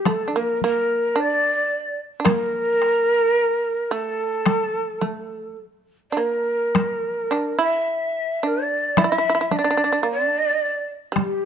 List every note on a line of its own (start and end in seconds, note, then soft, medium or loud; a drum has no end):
0.05 0.26 A3 medium
0.05 0.37 A4 medium
0.05 taiko rim soft
0.05 taiko high soft
0.28 0.35 D4 soft
0.35 0.61 A#3 medium
0.35 0.63 A#4 medium
0.61 1.14 A#3 medium
0.61 1.21 A#4 medium
0.61 taiko high soft
1.16 1.96 D4 medium
1.16 2.02 D5 medium
2.20 2.27 D4 medium
2.25 3.86 A#3 medium
2.25 3.92 A#4 loud
2.25 taiko rim medium
2.25 taiko high medium
2.82 taiko rim soft
3.90 4.99 A3 medium
3.90 5.60 A4 medium
4.46 taiko rim medium
4.46 taiko high medium
5.01 5.55 A3 medium
5.01 taiko high soft
6.10 6.19 D4 soft
6.10 6.20 D5 soft
6.17 7.28 A#3 medium
6.17 7.61 A#4 medium
6.75 taiko rim medium
6.75 taiko high medium
7.31 7.58 D4 medium
7.31 taiko rim soft
7.59 8.38 E4 medium
7.59 8.48 E5 medium
8.43 8.94 D4 medium
8.43 9.02 D5 medium
8.97 9.03 E4 medium
8.97 9.57 E5 medium
8.97 taiko rim medium
8.97 taiko high medium
9.04 9.11 E4 medium
9.12 9.17 E4 medium
9.18 9.26 E4 medium
9.30 9.34 E4 medium
9.35 9.40 E4 medium
9.41 9.48 E4 medium
9.51 9.57 D4 medium
9.51 taiko high soft
9.56 9.63 D4 soft
9.56 10.09 D5 medium
9.64 9.69 D4 medium
9.71 9.76 D4 soft
9.77 9.83 D4 medium
9.84 9.91 D4 soft
9.92 10.01 D4 medium
10.03 10.29 A#3 medium
10.11 10.87 D5 medium
10.29 10.84 D4 medium
11.12 11.45 G3 medium
11.12 taiko rim soft
11.12 taiko high soft
11.20 11.45 G4 medium